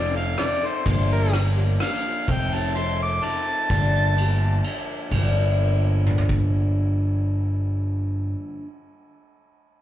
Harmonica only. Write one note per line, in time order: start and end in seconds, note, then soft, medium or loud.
0.00 0.16 D5 loud
0.16 0.43 F5 medium
0.41 0.68 D5 medium
0.66 0.88 C5 medium
0.88 1.10 C5 medium
1.12 1.34 A#4 loud
1.83 2.28 F5 loud
2.31 2.56 G5 medium
2.54 2.79 A5 medium
2.78 3.00 C6 medium
3.02 3.25 D6 loud
3.24 4.61 A5 loud